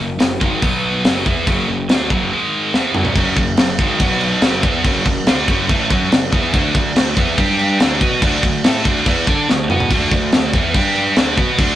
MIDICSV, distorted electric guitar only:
0, 0, Header, 1, 2, 480
1, 0, Start_track
1, 0, Tempo, 421941
1, 1673, Time_signature, 4, 2, 24, 8
1, 13371, End_track
2, 0, Start_track
2, 0, Title_t, "Distorted electric guitar"
2, 0, Program_c, 0, 30
2, 0, Note_on_c, 0, 42, 66
2, 0, Note_on_c, 0, 49, 72
2, 176, Note_off_c, 0, 42, 0
2, 177, Note_off_c, 0, 49, 0
2, 216, Note_on_c, 0, 42, 62
2, 221, Note_on_c, 0, 49, 75
2, 416, Note_off_c, 0, 42, 0
2, 419, Note_off_c, 0, 49, 0
2, 453, Note_on_c, 0, 44, 83
2, 461, Note_on_c, 0, 51, 97
2, 471, Note_on_c, 0, 56, 93
2, 696, Note_off_c, 0, 44, 0
2, 699, Note_off_c, 0, 51, 0
2, 703, Note_on_c, 0, 47, 91
2, 705, Note_off_c, 0, 56, 0
2, 711, Note_on_c, 0, 54, 108
2, 715, Note_on_c, 0, 59, 98
2, 1181, Note_off_c, 0, 47, 0
2, 1185, Note_off_c, 0, 54, 0
2, 1187, Note_off_c, 0, 59, 0
2, 1188, Note_on_c, 0, 42, 83
2, 1195, Note_on_c, 0, 49, 99
2, 1202, Note_on_c, 0, 54, 100
2, 1424, Note_off_c, 0, 42, 0
2, 1427, Note_off_c, 0, 49, 0
2, 1431, Note_off_c, 0, 54, 0
2, 1432, Note_on_c, 0, 52, 93
2, 1438, Note_on_c, 0, 59, 92
2, 1447, Note_on_c, 0, 64, 114
2, 1666, Note_off_c, 0, 52, 0
2, 1669, Note_off_c, 0, 59, 0
2, 1671, Note_on_c, 0, 42, 94
2, 1673, Note_off_c, 0, 64, 0
2, 1677, Note_on_c, 0, 49, 108
2, 1681, Note_on_c, 0, 54, 105
2, 1905, Note_off_c, 0, 42, 0
2, 1908, Note_off_c, 0, 49, 0
2, 1910, Note_off_c, 0, 54, 0
2, 1924, Note_on_c, 0, 42, 69
2, 1929, Note_on_c, 0, 49, 68
2, 2111, Note_off_c, 0, 42, 0
2, 2114, Note_off_c, 0, 49, 0
2, 2162, Note_on_c, 0, 50, 91
2, 2167, Note_on_c, 0, 57, 97
2, 2174, Note_on_c, 0, 62, 116
2, 2391, Note_off_c, 0, 50, 0
2, 2394, Note_off_c, 0, 57, 0
2, 2397, Note_off_c, 0, 62, 0
2, 2399, Note_on_c, 0, 42, 85
2, 2405, Note_on_c, 0, 49, 96
2, 2408, Note_on_c, 0, 54, 95
2, 2630, Note_off_c, 0, 42, 0
2, 2633, Note_off_c, 0, 49, 0
2, 2634, Note_off_c, 0, 54, 0
2, 2646, Note_on_c, 0, 44, 94
2, 2652, Note_on_c, 0, 51, 90
2, 2655, Note_on_c, 0, 56, 111
2, 3109, Note_off_c, 0, 51, 0
2, 3114, Note_off_c, 0, 44, 0
2, 3114, Note_on_c, 0, 52, 90
2, 3118, Note_off_c, 0, 56, 0
2, 3126, Note_on_c, 0, 59, 98
2, 3126, Note_on_c, 0, 64, 109
2, 3348, Note_off_c, 0, 52, 0
2, 3353, Note_off_c, 0, 59, 0
2, 3354, Note_off_c, 0, 64, 0
2, 3360, Note_on_c, 0, 42, 84
2, 3366, Note_on_c, 0, 49, 104
2, 3376, Note_on_c, 0, 54, 102
2, 3581, Note_off_c, 0, 42, 0
2, 3590, Note_off_c, 0, 49, 0
2, 3595, Note_off_c, 0, 54, 0
2, 3595, Note_on_c, 0, 42, 90
2, 3603, Note_on_c, 0, 49, 113
2, 3609, Note_on_c, 0, 54, 105
2, 3824, Note_off_c, 0, 42, 0
2, 3830, Note_off_c, 0, 49, 0
2, 3835, Note_off_c, 0, 54, 0
2, 3838, Note_on_c, 0, 42, 65
2, 3843, Note_on_c, 0, 49, 71
2, 4029, Note_off_c, 0, 42, 0
2, 4032, Note_off_c, 0, 49, 0
2, 4084, Note_on_c, 0, 42, 67
2, 4088, Note_on_c, 0, 49, 72
2, 4272, Note_off_c, 0, 42, 0
2, 4274, Note_off_c, 0, 49, 0
2, 4321, Note_on_c, 0, 44, 85
2, 4329, Note_on_c, 0, 51, 93
2, 4331, Note_on_c, 0, 56, 108
2, 4545, Note_off_c, 0, 51, 0
2, 4550, Note_on_c, 0, 47, 98
2, 4551, Note_off_c, 0, 44, 0
2, 4553, Note_off_c, 0, 56, 0
2, 4558, Note_on_c, 0, 54, 107
2, 4562, Note_on_c, 0, 59, 104
2, 5025, Note_off_c, 0, 47, 0
2, 5029, Note_off_c, 0, 54, 0
2, 5032, Note_off_c, 0, 59, 0
2, 5036, Note_on_c, 0, 42, 81
2, 5041, Note_on_c, 0, 49, 86
2, 5046, Note_on_c, 0, 54, 110
2, 5266, Note_off_c, 0, 49, 0
2, 5269, Note_off_c, 0, 42, 0
2, 5270, Note_on_c, 0, 52, 96
2, 5274, Note_off_c, 0, 54, 0
2, 5279, Note_on_c, 0, 59, 107
2, 5286, Note_on_c, 0, 64, 106
2, 5505, Note_on_c, 0, 42, 95
2, 5506, Note_off_c, 0, 52, 0
2, 5510, Note_off_c, 0, 59, 0
2, 5514, Note_off_c, 0, 64, 0
2, 5514, Note_on_c, 0, 49, 116
2, 5520, Note_on_c, 0, 54, 118
2, 5738, Note_off_c, 0, 42, 0
2, 5740, Note_off_c, 0, 49, 0
2, 5751, Note_off_c, 0, 54, 0
2, 5751, Note_on_c, 0, 42, 66
2, 5754, Note_on_c, 0, 49, 71
2, 5945, Note_off_c, 0, 42, 0
2, 5946, Note_off_c, 0, 49, 0
2, 5998, Note_on_c, 0, 50, 98
2, 6008, Note_on_c, 0, 57, 102
2, 6011, Note_on_c, 0, 62, 105
2, 6229, Note_off_c, 0, 50, 0
2, 6234, Note_off_c, 0, 57, 0
2, 6236, Note_off_c, 0, 62, 0
2, 6244, Note_on_c, 0, 42, 92
2, 6251, Note_on_c, 0, 49, 87
2, 6256, Note_on_c, 0, 54, 108
2, 6465, Note_off_c, 0, 49, 0
2, 6469, Note_on_c, 0, 45, 98
2, 6472, Note_off_c, 0, 42, 0
2, 6476, Note_off_c, 0, 54, 0
2, 6480, Note_on_c, 0, 52, 105
2, 6486, Note_on_c, 0, 57, 99
2, 6705, Note_off_c, 0, 45, 0
2, 6710, Note_off_c, 0, 52, 0
2, 6713, Note_off_c, 0, 57, 0
2, 6723, Note_on_c, 0, 54, 83
2, 6732, Note_on_c, 0, 61, 102
2, 6736, Note_on_c, 0, 66, 98
2, 6951, Note_off_c, 0, 54, 0
2, 6956, Note_off_c, 0, 61, 0
2, 6956, Note_on_c, 0, 42, 70
2, 6958, Note_off_c, 0, 66, 0
2, 6959, Note_on_c, 0, 49, 79
2, 7147, Note_off_c, 0, 42, 0
2, 7149, Note_off_c, 0, 49, 0
2, 7199, Note_on_c, 0, 52, 97
2, 7206, Note_on_c, 0, 59, 112
2, 7210, Note_on_c, 0, 64, 102
2, 7430, Note_off_c, 0, 52, 0
2, 7433, Note_off_c, 0, 59, 0
2, 7435, Note_off_c, 0, 64, 0
2, 7435, Note_on_c, 0, 50, 102
2, 7446, Note_on_c, 0, 57, 125
2, 7451, Note_on_c, 0, 62, 117
2, 7663, Note_off_c, 0, 50, 0
2, 7673, Note_off_c, 0, 57, 0
2, 7675, Note_off_c, 0, 62, 0
2, 7676, Note_on_c, 0, 50, 73
2, 7686, Note_on_c, 0, 57, 67
2, 7867, Note_off_c, 0, 50, 0
2, 7872, Note_off_c, 0, 57, 0
2, 7915, Note_on_c, 0, 50, 72
2, 7918, Note_on_c, 0, 57, 74
2, 8107, Note_off_c, 0, 50, 0
2, 8108, Note_off_c, 0, 57, 0
2, 8153, Note_on_c, 0, 52, 96
2, 8163, Note_on_c, 0, 59, 95
2, 8169, Note_on_c, 0, 64, 98
2, 8386, Note_off_c, 0, 52, 0
2, 8389, Note_off_c, 0, 59, 0
2, 8394, Note_off_c, 0, 64, 0
2, 8394, Note_on_c, 0, 55, 101
2, 8401, Note_on_c, 0, 67, 113
2, 8402, Note_on_c, 0, 62, 102
2, 8866, Note_off_c, 0, 55, 0
2, 8870, Note_off_c, 0, 62, 0
2, 8870, Note_off_c, 0, 67, 0
2, 8878, Note_on_c, 0, 50, 92
2, 8886, Note_on_c, 0, 57, 104
2, 8890, Note_on_c, 0, 62, 107
2, 9103, Note_off_c, 0, 57, 0
2, 9108, Note_off_c, 0, 50, 0
2, 9108, Note_on_c, 0, 59, 94
2, 9114, Note_off_c, 0, 62, 0
2, 9120, Note_on_c, 0, 66, 100
2, 9127, Note_on_c, 0, 71, 94
2, 9343, Note_off_c, 0, 59, 0
2, 9349, Note_off_c, 0, 66, 0
2, 9350, Note_on_c, 0, 50, 119
2, 9352, Note_off_c, 0, 71, 0
2, 9358, Note_on_c, 0, 57, 109
2, 9360, Note_on_c, 0, 62, 117
2, 9576, Note_off_c, 0, 50, 0
2, 9578, Note_off_c, 0, 57, 0
2, 9589, Note_off_c, 0, 62, 0
2, 9590, Note_on_c, 0, 50, 63
2, 9592, Note_on_c, 0, 57, 72
2, 9783, Note_off_c, 0, 50, 0
2, 9784, Note_off_c, 0, 57, 0
2, 9830, Note_on_c, 0, 57, 103
2, 9842, Note_on_c, 0, 69, 97
2, 9843, Note_on_c, 0, 64, 104
2, 10064, Note_off_c, 0, 57, 0
2, 10070, Note_off_c, 0, 64, 0
2, 10070, Note_off_c, 0, 69, 0
2, 10071, Note_on_c, 0, 50, 85
2, 10078, Note_on_c, 0, 57, 91
2, 10083, Note_on_c, 0, 62, 95
2, 10304, Note_off_c, 0, 50, 0
2, 10307, Note_off_c, 0, 57, 0
2, 10310, Note_off_c, 0, 62, 0
2, 10321, Note_on_c, 0, 52, 97
2, 10327, Note_on_c, 0, 59, 104
2, 10332, Note_on_c, 0, 64, 100
2, 10547, Note_off_c, 0, 59, 0
2, 10549, Note_off_c, 0, 52, 0
2, 10551, Note_on_c, 0, 62, 85
2, 10553, Note_off_c, 0, 64, 0
2, 10558, Note_on_c, 0, 69, 90
2, 10563, Note_on_c, 0, 74, 107
2, 10784, Note_off_c, 0, 62, 0
2, 10787, Note_off_c, 0, 69, 0
2, 10790, Note_off_c, 0, 74, 0
2, 10805, Note_on_c, 0, 50, 62
2, 10809, Note_on_c, 0, 57, 72
2, 10990, Note_off_c, 0, 50, 0
2, 10992, Note_off_c, 0, 57, 0
2, 11037, Note_on_c, 0, 59, 89
2, 11043, Note_on_c, 0, 66, 87
2, 11046, Note_on_c, 0, 71, 88
2, 11266, Note_off_c, 0, 59, 0
2, 11269, Note_off_c, 0, 66, 0
2, 11271, Note_off_c, 0, 71, 0
2, 11282, Note_on_c, 0, 50, 102
2, 11289, Note_on_c, 0, 57, 108
2, 11290, Note_on_c, 0, 62, 108
2, 11509, Note_off_c, 0, 50, 0
2, 11512, Note_off_c, 0, 57, 0
2, 11513, Note_off_c, 0, 62, 0
2, 11521, Note_on_c, 0, 50, 67
2, 11526, Note_on_c, 0, 57, 78
2, 11708, Note_off_c, 0, 50, 0
2, 11710, Note_off_c, 0, 57, 0
2, 11752, Note_on_c, 0, 50, 65
2, 11759, Note_on_c, 0, 57, 74
2, 11943, Note_off_c, 0, 50, 0
2, 11946, Note_off_c, 0, 57, 0
2, 11995, Note_on_c, 0, 52, 98
2, 12001, Note_on_c, 0, 59, 89
2, 12007, Note_on_c, 0, 64, 87
2, 12225, Note_off_c, 0, 52, 0
2, 12228, Note_off_c, 0, 59, 0
2, 12231, Note_off_c, 0, 64, 0
2, 12233, Note_on_c, 0, 55, 108
2, 12238, Note_on_c, 0, 62, 103
2, 12249, Note_on_c, 0, 67, 112
2, 12703, Note_off_c, 0, 55, 0
2, 12706, Note_off_c, 0, 62, 0
2, 12709, Note_on_c, 0, 50, 97
2, 12710, Note_on_c, 0, 57, 104
2, 12711, Note_off_c, 0, 67, 0
2, 12718, Note_on_c, 0, 62, 101
2, 12939, Note_off_c, 0, 57, 0
2, 12941, Note_off_c, 0, 50, 0
2, 12943, Note_on_c, 0, 59, 94
2, 12945, Note_off_c, 0, 62, 0
2, 12950, Note_on_c, 0, 66, 100
2, 12955, Note_on_c, 0, 71, 109
2, 13178, Note_off_c, 0, 59, 0
2, 13178, Note_on_c, 0, 50, 105
2, 13181, Note_off_c, 0, 66, 0
2, 13184, Note_off_c, 0, 71, 0
2, 13184, Note_on_c, 0, 57, 111
2, 13193, Note_on_c, 0, 62, 110
2, 13371, Note_off_c, 0, 50, 0
2, 13371, Note_off_c, 0, 57, 0
2, 13371, Note_off_c, 0, 62, 0
2, 13371, End_track
0, 0, End_of_file